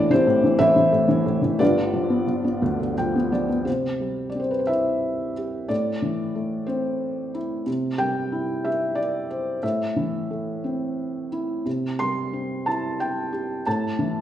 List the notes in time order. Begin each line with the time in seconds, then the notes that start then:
Already playing: A1 A2 E3 D4 D5
0.10 E3 C4 G4 C5
0.27 A2
0.44 E3
0.58 A1 A2 E4 C5 E5
0.76 E3
0.92 A2
1.08 E3
1.26 A2
1.42 E3
1.59 G1 G2 D4 F4 B4 D5
1.77 D3
1.93 F3
2.10 B3
2.27 F3
2.44 B3
2.62 D2 D3
2.80 D3
2.98 F3 G5
3.15 B3
3.32 F3 D5
3.49 B3
3.65 C3 C5
4.00 G3
4.29 D5
4.35 C4
4.40 C5
4.51 B4
4.59 C5
4.67 E4 E5
5.37 G4
5.68 A2 D5
6.02 E3
6.35 A3
6.67 C4 C5
7.34 E4
7.67 C3
7.98 G3 G5
8.32 E4
8.65 G4 E5
8.95 D5
9.30 C5
9.63 A2 E5
9.96 E3
10.31 A3
10.64 C4
11.32 E4
11.66 C3
11.99 G3 C6
12.33 C4
12.66 E4 A5
13.00 G5
13.32 G4
13.66 A2 A5
13.99 E3